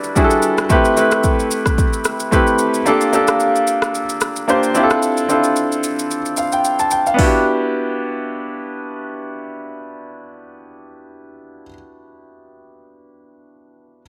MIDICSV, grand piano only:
0, 0, Header, 1, 2, 480
1, 0, Start_track
1, 0, Tempo, 540541
1, 622, Time_signature, 4, 2, 24, 8
1, 12503, End_track
2, 0, Start_track
2, 0, Title_t, "Grand piano"
2, 0, Program_c, 0, 0
2, 0, Control_c, 0, 64, 127
2, 0, Note_on_c, 0, 55, 78
2, 0, Note_on_c, 0, 62, 72
2, 0, Note_on_c, 0, 64, 73
2, 0, Note_on_c, 0, 66, 68
2, 0, Note_on_c, 0, 71, 94
2, 0, Note_on_c, 0, 74, 84
2, 136, Note_off_c, 0, 55, 0
2, 136, Note_on_c, 0, 55, 81
2, 141, Note_off_c, 0, 62, 0
2, 141, Note_on_c, 0, 62, 74
2, 147, Note_off_c, 0, 64, 0
2, 147, Note_on_c, 0, 64, 76
2, 152, Note_off_c, 0, 66, 0
2, 152, Note_on_c, 0, 66, 73
2, 158, Note_on_c, 0, 68, 72
2, 213, Note_off_c, 0, 68, 0
2, 215, Note_on_c, 0, 69, 87
2, 532, Note_off_c, 0, 55, 0
2, 535, Note_off_c, 0, 62, 0
2, 538, Note_off_c, 0, 64, 0
2, 540, Note_off_c, 0, 66, 0
2, 572, Note_off_c, 0, 69, 0
2, 616, Note_on_c, 0, 57, 88
2, 621, Note_on_c, 0, 60, 77
2, 626, Note_on_c, 0, 64, 77
2, 631, Note_on_c, 0, 67, 79
2, 634, Control_c, 0, 64, 0
2, 637, Note_off_c, 0, 71, 0
2, 637, Note_off_c, 0, 74, 0
2, 637, Note_on_c, 0, 71, 90
2, 805, Control_c, 0, 64, 127
2, 815, Note_off_c, 0, 57, 0
2, 818, Note_off_c, 0, 60, 0
2, 821, Note_off_c, 0, 64, 0
2, 823, Note_off_c, 0, 67, 0
2, 826, Note_off_c, 0, 71, 0
2, 856, Note_on_c, 0, 57, 76
2, 861, Note_on_c, 0, 60, 69
2, 867, Note_on_c, 0, 64, 70
2, 872, Note_on_c, 0, 67, 73
2, 877, Note_on_c, 0, 71, 84
2, 1632, Note_off_c, 0, 57, 0
2, 1634, Note_off_c, 0, 60, 0
2, 1637, Note_off_c, 0, 64, 0
2, 1639, Note_off_c, 0, 67, 0
2, 1642, Note_off_c, 0, 71, 0
2, 2054, Note_on_c, 0, 57, 80
2, 2059, Note_on_c, 0, 60, 73
2, 2065, Note_on_c, 0, 64, 72
2, 2070, Note_on_c, 0, 67, 72
2, 2076, Note_on_c, 0, 71, 89
2, 2451, Note_off_c, 0, 57, 0
2, 2454, Note_off_c, 0, 60, 0
2, 2457, Note_off_c, 0, 64, 0
2, 2459, Note_off_c, 0, 67, 0
2, 2462, Note_off_c, 0, 71, 0
2, 2534, Note_on_c, 0, 58, 84
2, 2540, Note_on_c, 0, 62, 78
2, 2545, Note_on_c, 0, 65, 75
2, 2550, Note_on_c, 0, 67, 75
2, 2551, Control_c, 0, 64, 0
2, 2556, Note_on_c, 0, 69, 93
2, 2701, Control_c, 0, 64, 127
2, 2734, Note_off_c, 0, 58, 0
2, 2737, Note_off_c, 0, 62, 0
2, 2740, Note_off_c, 0, 65, 0
2, 2743, Note_off_c, 0, 67, 0
2, 2746, Note_off_c, 0, 69, 0
2, 2775, Note_on_c, 0, 58, 77
2, 2780, Note_on_c, 0, 62, 73
2, 2784, Note_on_c, 0, 65, 71
2, 2790, Note_on_c, 0, 67, 71
2, 2796, Note_on_c, 0, 69, 86
2, 3551, Note_off_c, 0, 58, 0
2, 3553, Note_off_c, 0, 62, 0
2, 3556, Note_off_c, 0, 65, 0
2, 3559, Note_off_c, 0, 67, 0
2, 3561, Note_off_c, 0, 69, 0
2, 3974, Note_on_c, 0, 58, 77
2, 3979, Note_on_c, 0, 62, 73
2, 3985, Note_on_c, 0, 65, 73
2, 3990, Note_on_c, 0, 67, 73
2, 3996, Note_on_c, 0, 72, 88
2, 4205, Note_off_c, 0, 62, 0
2, 4212, Note_on_c, 0, 60, 81
2, 4215, Note_off_c, 0, 65, 0
2, 4218, Note_off_c, 0, 58, 0
2, 4218, Note_on_c, 0, 62, 78
2, 4220, Note_off_c, 0, 67, 0
2, 4224, Note_on_c, 0, 64, 77
2, 4228, Note_on_c, 0, 65, 76
2, 4229, Note_off_c, 0, 72, 0
2, 4232, Control_c, 0, 64, 0
2, 4234, Note_on_c, 0, 67, 75
2, 4291, Note_off_c, 0, 67, 0
2, 4292, Note_on_c, 0, 69, 90
2, 4375, Control_c, 0, 64, 127
2, 4610, Note_off_c, 0, 60, 0
2, 4613, Note_off_c, 0, 62, 0
2, 4616, Note_off_c, 0, 64, 0
2, 4618, Note_off_c, 0, 65, 0
2, 4650, Note_off_c, 0, 69, 0
2, 4692, Note_on_c, 0, 60, 75
2, 4698, Note_on_c, 0, 62, 68
2, 4703, Note_on_c, 0, 64, 68
2, 4709, Note_on_c, 0, 65, 71
2, 4714, Note_on_c, 0, 69, 83
2, 5470, Note_off_c, 0, 60, 0
2, 5472, Note_off_c, 0, 62, 0
2, 5475, Note_off_c, 0, 64, 0
2, 5478, Note_off_c, 0, 65, 0
2, 5481, Note_off_c, 0, 69, 0
2, 5664, Note_on_c, 0, 77, 59
2, 5788, Note_off_c, 0, 77, 0
2, 5795, Note_on_c, 0, 79, 69
2, 6022, Note_off_c, 0, 79, 0
2, 6035, Note_on_c, 0, 81, 67
2, 6137, Note_off_c, 0, 81, 0
2, 6142, Note_on_c, 0, 79, 66
2, 6267, Note_off_c, 0, 79, 0
2, 6275, Note_on_c, 0, 77, 60
2, 6340, Note_on_c, 0, 59, 77
2, 6361, Note_on_c, 0, 62, 73
2, 6383, Note_on_c, 0, 64, 74
2, 6394, Control_c, 0, 64, 0
2, 6404, Note_on_c, 0, 66, 72
2, 6426, Note_on_c, 0, 67, 85
2, 6502, Note_off_c, 0, 77, 0
2, 6537, Control_c, 0, 64, 127
2, 10321, Note_off_c, 0, 59, 0
2, 10342, Note_off_c, 0, 62, 0
2, 10364, Note_off_c, 0, 64, 0
2, 10385, Note_off_c, 0, 66, 0
2, 10407, Note_off_c, 0, 67, 0
2, 12451, Control_c, 0, 64, 0
2, 12503, End_track
0, 0, End_of_file